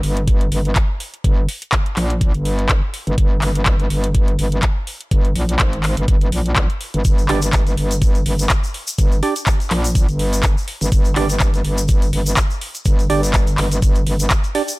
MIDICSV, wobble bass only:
0, 0, Header, 1, 2, 480
1, 0, Start_track
1, 0, Tempo, 483871
1, 1234, Time_signature, 4, 2, 24, 8
1, 14674, End_track
2, 0, Start_track
2, 0, Title_t, "Wobble bass"
2, 0, Program_c, 0, 39
2, 34, Note_on_c, 0, 31, 96
2, 497, Note_off_c, 0, 31, 0
2, 514, Note_on_c, 0, 31, 97
2, 737, Note_off_c, 0, 31, 0
2, 1234, Note_on_c, 0, 31, 98
2, 1456, Note_off_c, 0, 31, 0
2, 1954, Note_on_c, 0, 34, 96
2, 2305, Note_off_c, 0, 34, 0
2, 2326, Note_on_c, 0, 31, 99
2, 2785, Note_off_c, 0, 31, 0
2, 3045, Note_on_c, 0, 31, 97
2, 3136, Note_off_c, 0, 31, 0
2, 3153, Note_on_c, 0, 31, 99
2, 3376, Note_off_c, 0, 31, 0
2, 3394, Note_on_c, 0, 31, 104
2, 3857, Note_off_c, 0, 31, 0
2, 3874, Note_on_c, 0, 31, 99
2, 4337, Note_off_c, 0, 31, 0
2, 4353, Note_on_c, 0, 31, 99
2, 4576, Note_off_c, 0, 31, 0
2, 5073, Note_on_c, 0, 31, 96
2, 5296, Note_off_c, 0, 31, 0
2, 5313, Note_on_c, 0, 34, 103
2, 5536, Note_off_c, 0, 34, 0
2, 5553, Note_on_c, 0, 32, 101
2, 5905, Note_off_c, 0, 32, 0
2, 5925, Note_on_c, 0, 31, 95
2, 6016, Note_off_c, 0, 31, 0
2, 6033, Note_on_c, 0, 31, 103
2, 6256, Note_off_c, 0, 31, 0
2, 6273, Note_on_c, 0, 34, 98
2, 6624, Note_off_c, 0, 34, 0
2, 6885, Note_on_c, 0, 31, 100
2, 6976, Note_off_c, 0, 31, 0
2, 6993, Note_on_c, 0, 31, 100
2, 7216, Note_off_c, 0, 31, 0
2, 7232, Note_on_c, 0, 31, 98
2, 7696, Note_off_c, 0, 31, 0
2, 7712, Note_on_c, 0, 31, 91
2, 8176, Note_off_c, 0, 31, 0
2, 8193, Note_on_c, 0, 31, 99
2, 8416, Note_off_c, 0, 31, 0
2, 8913, Note_on_c, 0, 31, 99
2, 9136, Note_off_c, 0, 31, 0
2, 9632, Note_on_c, 0, 34, 96
2, 9984, Note_off_c, 0, 34, 0
2, 10006, Note_on_c, 0, 31, 101
2, 10465, Note_off_c, 0, 31, 0
2, 10726, Note_on_c, 0, 31, 93
2, 10816, Note_off_c, 0, 31, 0
2, 10833, Note_on_c, 0, 31, 98
2, 11056, Note_off_c, 0, 31, 0
2, 11073, Note_on_c, 0, 31, 96
2, 11536, Note_off_c, 0, 31, 0
2, 11552, Note_on_c, 0, 31, 95
2, 12015, Note_off_c, 0, 31, 0
2, 12032, Note_on_c, 0, 31, 99
2, 12256, Note_off_c, 0, 31, 0
2, 12753, Note_on_c, 0, 31, 101
2, 12976, Note_off_c, 0, 31, 0
2, 12994, Note_on_c, 0, 31, 99
2, 13457, Note_off_c, 0, 31, 0
2, 13474, Note_on_c, 0, 31, 96
2, 13697, Note_off_c, 0, 31, 0
2, 13713, Note_on_c, 0, 31, 101
2, 13936, Note_off_c, 0, 31, 0
2, 13954, Note_on_c, 0, 31, 95
2, 14176, Note_off_c, 0, 31, 0
2, 14674, End_track
0, 0, End_of_file